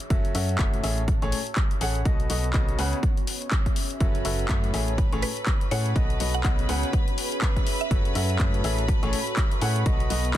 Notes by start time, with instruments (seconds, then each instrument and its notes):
Already playing: ambient pad C#4 G#4 E5
0.00 closed hi-hat
0.10 fm bass F#1, grand piano F#3 C#4 F#4 A4 E5, ambient pad F#4, kick, closed hi-hat
0.25 closed hi-hat
0.35 fm bass F#2, grand piano F#3 C#4 F#4 A4 E5, open hi-hat
0.45 ambient pad C#5 A5
0.49 closed hi-hat
0.59 fm bass F#1, grand piano A2 C#4 F#4 A4 E5, kick, clap, closed hi-hat
0.74 closed hi-hat
0.83 fm bass A1, grand piano A2 C#4 G#4 A4 E5, ambient pad A4, open hi-hat
0.98 closed hi-hat
1.08 kick, closed hi-hat
1.22 fm bass A1, grand piano A2 C#4 G#4 A4 C#5, closed hi-hat
1.32 open hi-hat
1.39 ambient pad E5 B5 C#6
1.47 closed hi-hat
1.56 kick, clap, closed hi-hat
1.71 closed hi-hat
1.81 fm bass A1, grand piano C#4 G#4 A4 F#5, open hi-hat
1.95 closed hi-hat
2.05 fm bass B1, grand piano B2 B3 F#4 A4 D#5, ambient pad B3, kick, closed hi-hat
2.20 closed hi-hat
2.30 fm bass B1, grand piano B2 B3 F#4 A4 D#5, open hi-hat
2.40 ambient pad F#4 C#5 D#5
2.44 closed hi-hat
2.54 fm bass B1, grand piano C#3 B3 F#4 A4 D#5, kick, clap, closed hi-hat
2.69 closed hi-hat
2.78 fm bass C#2, grand piano C#3 C#4 G#4 B4 F#5, ambient pad C#4, open hi-hat
2.93 closed hi-hat
3.03 kick, closed hi-hat
3.17 closed hi-hat
3.27 open hi-hat
3.35 ambient pad G#4 E5
3.42 closed hi-hat
3.51 kick, clap, closed hi-hat
3.66 kick, closed hi-hat
3.76 open hi-hat
3.90 closed hi-hat
4.00 fm bass F#1, grand piano F#3 C#4 F#4 A4 E5, ambient pad F#4, violin section B4 B5, kick, closed hi-hat
4.15 closed hi-hat
4.25 fm bass F#1, grand piano F#3 C#4 F#4 A4 E5, open hi-hat
4.35 ambient pad C#5 A5
4.39 closed hi-hat
4.49 fm bass F#2, grand piano A2 C#4 F#4 A4 E5, kick, clap, closed hi-hat
4.64 closed hi-hat
4.74 fm bass A1, grand piano A2 C#4 G#4 A4 E5, ambient pad A4, open hi-hat
4.88 closed hi-hat
4.98 ambient pad C#6, kick, closed hi-hat
5.12 fm bass A1, grand piano A2 C#4 G#4 A4 C#5, ambient pad B5, closed hi-hat
5.22 synth pluck B4, open hi-hat
5.28 ambient pad E5
5.37 closed hi-hat
5.46 kick, clap, closed hi-hat
5.61 closed hi-hat
5.71 fm bass A2, grand piano C#4 G#4 A4 F#5, synth pluck C#5, open hi-hat
5.86 closed hi-hat
5.96 fm bass B1, grand piano B2 B3 F#4 A4 D#5, ambient pad B3, kick, closed hi-hat
6.10 ambient pad F#4, closed hi-hat
6.20 fm bass B1, grand piano B2 B3 F#4 A4 D#5, open hi-hat
6.30 ambient pad C#5 D#5
6.34 synth pluck F#5, closed hi-hat
6.44 fm bass B1, grand piano C#3 B3 F#4 A4 D#5, synth pluck F#5, kick, clap, closed hi-hat
6.59 closed hi-hat
6.69 fm bass C#2, grand piano C#3 C#4 G#4 B4 F#5, ambient pad C#4, open hi-hat
6.80 ambient pad G#4, closed hi-hat
6.93 kick, closed hi-hat
7.08 closed hi-hat
7.18 open hi-hat
7.25 ambient pad E5
7.32 closed hi-hat
7.42 kick, clap, closed hi-hat
7.56 kick, closed hi-hat
7.67 open hi-hat
7.81 synth pluck E5, closed hi-hat
7.91 fm bass F#1, grand piano F#3 C#4 F#4 A4 E5, ambient pad F#4, kick, closed hi-hat
8.05 closed hi-hat
8.15 fm bass F#2, grand piano F#3 C#4 F#4 A4 E5, open hi-hat
8.25 ambient pad C#5 A5
8.30 closed hi-hat
8.39 fm bass F#2, grand piano A2 C#4 F#4 A4 E5, kick, clap, closed hi-hat
8.54 closed hi-hat
8.64 fm bass A1, grand piano A2 C#4 G#4 A4 E5, ambient pad A4, open hi-hat
8.78 closed hi-hat
8.88 ambient pad B5, kick, closed hi-hat
9.03 fm bass A1, grand piano A2 C#4 G#4 A4 C#5, closed hi-hat
9.13 open hi-hat
9.20 ambient pad E5 C#6
9.27 closed hi-hat
9.37 kick, clap, closed hi-hat
9.52 closed hi-hat
9.62 fm bass A2, grand piano C#4 G#4 A4 F#5, open hi-hat
9.76 closed hi-hat
9.86 fm bass B1, grand piano B2 B3 F#4 A4 D#5, ambient pad B3, kick, closed hi-hat
10.00 closed hi-hat
10.10 fm bass B1, grand piano B2 B3 F#4 A4 D#5, open hi-hat
10.21 ambient pad F#4 C#5 D#5
10.25 closed hi-hat